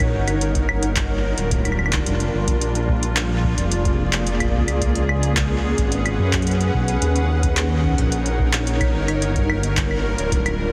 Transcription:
0.00 0.15 A#1 medium
0.00 0.39 D#4 medium
0.00 2.58 A#4 medium
0.00 0.39 C#5 medium
0.00 0.39 F#5 medium
0.00 kick loud
0.00 closed hi-hat soft
0.00 claves medium
0.14 1.34 G1 medium
0.28 closed hi-hat medium
0.28 claves soft
0.41 2.59 G3 medium
0.41 2.59 D4 medium
0.41 4.78 F4 medium
0.41 closed hi-hat medium
0.55 kick loud
0.55 closed hi-hat soft
0.69 claves medium
0.83 closed hi-hat medium
0.96 kick loud
0.96 clap loud
0.96 closed hi-hat medium
1.38 2.03 D1 medium
1.38 closed hi-hat medium
1.51 kick loud
1.51 closed hi-hat medium
1.65 closed hi-hat soft
1.65 claves soft
1.72 claves soft
1.79 claves soft
1.86 claves soft
1.93 kick loud
1.93 clap loud
1.93 closed hi-hat soft
2.06 2.29 F1 medium
2.06 closed hi-hat medium
2.20 closed hi-hat soft
2.34 2.57 G1 medium
2.48 kick loud
2.48 closed hi-hat medium
2.61 3.54 A#1 medium
2.61 4.80 A#3 medium
2.61 6.98 G#4 medium
2.61 4.80 D5 medium
2.61 closed hi-hat medium
2.75 closed hi-hat soft
2.89 kick loud
3.03 closed hi-hat medium
3.17 clap loud
3.17 closed hi-hat medium
3.44 kick loud
3.58 4.56 F1 medium
3.58 closed hi-hat soft
3.72 closed hi-hat medium
3.85 kick loud
3.85 closed hi-hat soft
4.13 clap loud
4.13 closed hi-hat soft
4.27 closed hi-hat medium
4.40 kick soft
4.40 closed hi-hat soft
4.40 claves soft
4.44 kick medium
4.47 kick medium
4.51 kick medium
4.54 5.74 C#2 medium
4.54 kick medium
4.58 kick medium
4.61 kick medium
4.65 kick medium
4.65 closed hi-hat medium
4.65 claves soft
4.82 7.00 C#4 medium
4.82 7.00 B4 medium
4.82 9.18 F#5 medium
4.82 kick loud
4.82 closed hi-hat medium
4.95 closed hi-hat soft
5.09 claves medium
5.23 closed hi-hat medium
5.37 kick loud
5.37 clap loud
5.37 closed hi-hat medium
5.78 6.19 G#1 medium
5.78 kick loud
5.78 closed hi-hat soft
5.92 closed hi-hat medium
6.06 closed hi-hat soft
6.06 claves soft
6.19 6.71 F#2 loud
6.33 kick loud
6.33 clap loud
6.33 closed hi-hat soft
6.42 closed hi-hat soft
6.47 closed hi-hat medium
6.51 closed hi-hat soft
6.61 closed hi-hat soft
6.74 6.97 B1 loud
6.74 kick loud
6.88 closed hi-hat soft
7.02 7.94 D#2 medium
7.02 9.20 D#4 medium
7.02 10.72 A#4 medium
7.02 9.20 C#5 medium
7.02 closed hi-hat medium
7.16 closed hi-hat soft
7.43 kick loud
7.43 closed hi-hat soft
7.57 clap loud
7.57 closed hi-hat medium
7.84 kick soft
7.89 kick medium
7.94 kick medium
7.98 8.96 A#1 medium
7.98 kick medium
7.98 closed hi-hat soft
8.03 kick medium
8.07 kick loud
8.12 closed hi-hat medium
8.26 closed hi-hat soft
8.39 kick loud
8.53 clap loud
8.53 closed hi-hat soft
8.67 closed hi-hat medium
8.81 kick loud
8.81 closed hi-hat soft
8.81 claves soft
8.95 10.15 G1 medium
9.08 closed hi-hat soft
9.08 claves soft
9.22 10.72 G3 medium
9.22 10.72 D4 medium
9.22 10.72 F4 medium
9.22 closed hi-hat medium
9.36 kick medium
9.36 closed hi-hat soft
9.50 claves medium
9.63 closed hi-hat soft
9.77 kick loud
9.77 clap loud
9.77 closed hi-hat medium
9.91 claves soft
10.18 10.72 D1 medium
10.18 closed hi-hat soft
10.32 kick medium
10.32 closed hi-hat medium
10.46 closed hi-hat soft
10.46 claves soft

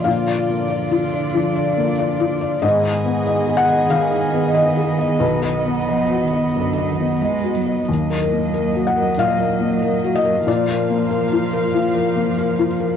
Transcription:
0.00 2.59 F3 soft
0.00 2.59 F4 soft
0.00 2.58 F5 medium
0.05 1.31 A#2 soft
0.05 2.59 D3 soft
0.05 2.63 D5 soft
0.28 0.62 D5 soft
0.49 0.83 A#3 soft
0.70 1.04 D5 soft
0.91 1.26 F4 soft
1.14 1.48 D5 soft
1.35 1.69 F3 soft
1.56 1.90 D5 soft
1.77 2.12 A#3 soft
1.99 2.33 D5 soft
2.20 2.54 F4 soft
2.41 2.63 D5 soft
2.62 3.86 G#2 medium
2.62 5.76 D#3 medium
2.62 7.87 B3 soft
2.62 5.20 G#4 soft
2.62 2.82 D#5 medium
2.62 7.86 D#5 soft
2.84 3.18 D#5 soft
3.06 3.39 B3 soft
3.27 3.61 D#5 soft
3.48 3.82 G#4 soft
3.57 3.87 F#5 medium
3.69 4.03 D#5 soft
3.90 4.25 D#3 soft
3.90 4.51 F5 medium
4.12 4.46 D#5 soft
4.34 4.68 B3 soft
4.55 4.97 D#5 medium
4.77 5.12 G#4 soft
4.99 5.20 D#5 soft
5.20 6.50 B1 soft
5.20 7.51 B4 medium
5.42 5.78 D#5 soft
5.65 6.01 B3 soft
5.87 6.23 F3 medium
5.87 6.23 D#5 soft
6.11 6.46 F#4 soft
6.21 6.56 D#3 soft
6.33 6.68 D#5 soft
6.55 6.91 F#2 soft
6.55 6.89 D3 soft
6.78 7.13 D#5 soft
6.88 7.23 D#3 soft
7.00 7.35 B3 soft
7.22 7.57 G#3 soft
7.22 7.57 D#5 soft
7.44 7.79 F#4 soft
7.55 7.88 F#3 soft
7.66 7.88 D#5 soft
7.87 9.15 D#2 soft
7.87 10.43 F#3 soft
7.87 12.97 A#3 soft
7.87 10.43 D#5 soft
8.10 8.20 A#4 soft
8.22 8.52 A#4 soft
8.32 8.67 A#3 soft
8.54 8.88 A#4 soft
8.75 9.10 F#4 soft
8.87 9.17 F#5 medium
8.96 9.31 A#4 soft
9.18 9.53 A#2 soft
9.18 10.11 F5 medium
9.40 9.74 A#4 soft
9.61 9.95 A#3 soft
9.82 10.17 A#4 soft
10.04 10.38 F#4 soft
10.15 10.45 D#5 medium
10.25 10.47 A#4 soft
10.47 11.70 A#2 soft
10.47 12.97 F3 medium
10.47 12.97 F4 soft
10.47 12.67 D5 medium
10.47 12.97 F5 soft
10.69 11.03 A#4 soft
10.90 11.24 A#3 soft
11.11 11.45 A#4 soft
11.32 11.66 F4 soft
11.53 11.87 A#4 soft
11.74 12.08 F3 soft
11.95 12.29 A#4 soft
12.16 12.50 A#3 soft
12.38 12.72 A#4 soft
12.59 12.94 F4 soft
12.80 12.97 A#4 soft

